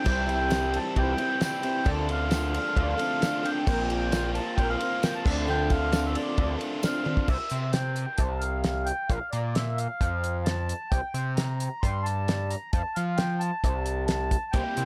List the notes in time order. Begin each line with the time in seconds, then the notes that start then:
Already playing: G5
0.05 C2 C3 E3 G3 C4 E4 G4, kick, crash
0.26 C4 E4 G4, ride
0.31 G3
0.50 E3 G3 C4 E4 G4, snare, ride, tambourine
0.73 C3 E3 G3 C4 E4 A5, ride
0.96 C2 E3 G3 C4 E4 G5, kick, ride
1.17 C3 E3 G3 C4 E4 G4, ride
1.40 E3 G3 C4 E4 G4 G5, snare, ride, tambourine
1.62 G3 C4 E4 G4, ride
1.85 D2 D3 F3 A3 C4 D4 F4 A4 A5, kick, ride
2.07 A3 C4 D4 F4 A4, ride
2.11 F5
2.28 D3 F3 A3 C4 A4, snare, ride, tambourine
2.33 D4 F4
2.54 D3 A3 D4 F4, ride
2.76 D2 D3 A3 D4 F4, kick, ride
2.98 A3 C4 D4 F4 A4, ride
3.02 D3
3.20 D3 F3 A3 C4 D4 F4 A4, snare, ride, tambourine
3.42 A3 C4 D4 F4 A4 G5, ride
3.66 A#1 A#2 F3 A#3 C4 F4 A#4, kick, crash
3.88 A#3 C4 F4 A#4, ride
4.12 F3 A#3 C4 F4 A#4, snare, ride, tambourine
4.34 A#2 F3 A#3 C4 F4 A5, ride
4.56 A#1 F3 A#3 C4 F4 G5, kick, ride
4.69 F5
4.79 A#2 F3 A#3 C4 F4 A#4, ride
5.02 F3 A#3 C4 F4 A#4 G5, snare, ride, tambourine
5.15 A5
5.25 D2 D3 A3 C4 D4 F4 A4, kick, crash
5.48 D3 F3 A3 C4 D4 F4 A4 G5
5.70 A3 C4 D4 F4 A4 F5, kick, ride
5.92 D3 F3 A3 C4 D4 F4 A4, snare, ride, tambourine
6.05 E5
6.15 D3 A3 D4 F4 D5, ride
6.38 D2 D3 A3 D4 F4, kick, ride
6.58 C4 D4 F4 A4, ride
6.62 D3 A3
6.82 D3 F3 A3 C4 D4 A4 F5, snare, ride, tambourine
6.86 F4
7.05 A3 C4 D4 F4 A4, high tom
7.17 kick
7.22 F5
7.28 C2 E5, kick, crash
7.50 C3, closed hi-hat
7.72 G5, snare, closed hi-hat
7.96 closed hi-hat
8.18 C2 A5, kick, closed hi-hat
8.39 F5, closed hi-hat
8.64 snare, closed hi-hat
8.85 G5, closed hi-hat
9.08 A#1 F5, kick, closed hi-hat
9.31 A#2 D5, closed hi-hat
9.55 E5, snare, closed hi-hat
9.77 F5, closed hi-hat
10.01 F2, kick, closed hi-hat
10.24 closed hi-hat
10.44 A5, snare, closed hi-hat
10.69 closed hi-hat
10.91 C2 G5, kick, closed hi-hat
11.14 C3, closed hi-hat
11.36 A#5, snare, closed hi-hat
11.60 closed hi-hat
11.82 G2 C6, kick, closed hi-hat
12.03 A5, closed hi-hat
12.28 snare, closed hi-hat
12.50 A#5, closed hi-hat
12.73 F2 A5, kick, closed hi-hat
12.95 F3 F5, closed hi-hat
13.17 G5, snare, closed hi-hat
13.39 A5, closed hi-hat
13.64 C2, kick, closed hi-hat
13.86 closed hi-hat
14.06 A5, snare, closed hi-hat
14.31 kick, closed hi-hat
14.52 C2 C3 G3 A#3 G5, kick, closed hi-hat
14.56 E4 G4
14.76 C3 A#3 E4 G4, closed hi-hat